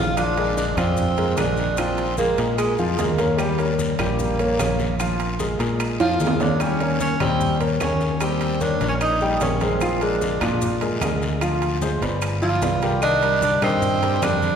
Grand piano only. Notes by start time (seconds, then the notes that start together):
Already playing: D#3 G3 A3 D4
0.17 F3 F4 F5
0.38 G#3 G#4 A#4
0.77 F3 F4 F5
1.18 G#3 G#4 A#4
1.38 G#3 G#4 A#4
1.78 F3 F4 F5
2.19 G#3 G#4 A#4
2.39 G#3 G#4 A#4
2.79 F3 F4 F5
2.99 G#3 G#4 A#4
3.20 A#3 A#4 C#5
3.39 G3 G4 G5
3.59 A#3 A#4 C#5
3.99 G3 G4 G5
4.39 A#3 A#4 C#5
4.60 A#3 A#4 C#5
5.00 F3 F4 F5
5.39 G#3 G#4 A#4
5.59 G#3 G#4 A#4
6.00 F3 F4 F5
6.20 G#3 G#4 A#4
6.40 A#3 A#4 C#5
6.60 G3 G4 G5
6.81 A#3 A#4 C#5
7.21 G3 G4 G5
7.61 A#3 A#4 C#5
7.81 A#3 A#4 C#5
8.21 G3 G4 G5
8.61 A#3 A#4 C#5
8.82 A#3 A#4 C#5
9.21 G3 G4 G5
9.42 A#3 A#4 C#5
9.61 G#3 G#4 A#4
9.82 F3 F4 F5
10.01 G#3 G#4 A#4
10.42 F3 F4 F5
10.82 G#3 G#4 A#4
11.02 G#3 G#4 A#4
11.41 F3 F4 F5
11.82 G#3 G#4 C5
12.02 B3 B4 D5
12.42 F3 F4 F5
12.62 B3 B4 D5
12.82 G3 G4 A#4
13.02 D#3 D#4 D#5
13.23 G3 G4 A#4
13.62 D#3 D#4 D#5
14.02 G3 G4 A#4
14.22 G3 G4 A#4